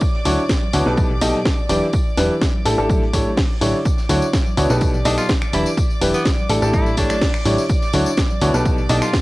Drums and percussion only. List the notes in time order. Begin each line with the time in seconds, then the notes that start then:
0.01 kick, tambourine
0.14 snare
0.25 open hi-hat, tambourine, high conga
0.39 tambourine
0.49 kick, snare, tambourine
0.62 high conga
0.73 open hi-hat, tambourine
0.85 snare, tambourine
0.97 kick, tambourine, high conga
1.21 open hi-hat, tambourine
1.33 snare, tambourine, high conga
1.45 kick, snare, tambourine
1.58 tambourine
1.69 open hi-hat, tambourine, high conga
1.81 snare, tambourine
1.93 kick, tambourine
2.07 tambourine
2.17 snare, open hi-hat, tambourine, high conga
2.31 tambourine
2.41 kick, snare, tambourine
2.54 high conga
2.65 open hi-hat, tambourine
2.78 tambourine
2.89 kick, tambourine, high conga
3.02 snare
3.13 kick, open hi-hat, tambourine
3.25 tambourine, high conga
3.37 kick, snare, open hi-hat, tambourine
3.50 tambourine
3.61 open hi-hat, tambourine, high conga
3.74 tambourine
3.85 kick, tambourine
3.98 snare, tambourine
4.09 open hi-hat, tambourine, high conga
4.21 tambourine
4.33 kick, snare, tambourine
4.46 tambourine, high conga
4.57 open hi-hat, tambourine
4.69 snare, tambourine
4.81 kick, tambourine, high conga
4.94 tambourine
5.05 open hi-hat, tambourine
5.18 finger snap, snare, tambourine, high conga
5.29 kick, snare, tambourine
5.42 finger snap, tambourine
5.53 open hi-hat, tambourine, high conga
5.65 snare, tambourine
5.77 kick, tambourine
5.90 tambourine
6.01 open hi-hat, tambourine, high conga
6.14 tambourine
6.25 kick, snare, tambourine
6.38 tambourine, high conga
6.49 open hi-hat, tambourine
6.61 tambourine
6.73 kick, tambourine, high conga
6.86 snare, tambourine
6.97 kick, open hi-hat, tambourine
7.09 finger snap, tambourine, high conga
7.21 kick, snare, open hi-hat, tambourine
7.33 finger snap, tambourine
7.45 open hi-hat, tambourine, high conga
7.58 tambourine
7.69 kick, tambourine
7.81 snare, tambourine
7.93 open hi-hat, tambourine, high conga
8.05 tambourine
8.17 kick, snare, tambourine
8.30 tambourine, high conga
8.41 open hi-hat, tambourine
8.54 snare, tambourine
8.65 kick, tambourine, high conga
8.78 tambourine
8.89 open hi-hat, tambourine
9.01 finger snap, snare, tambourine, high conga
9.13 kick, snare, tambourine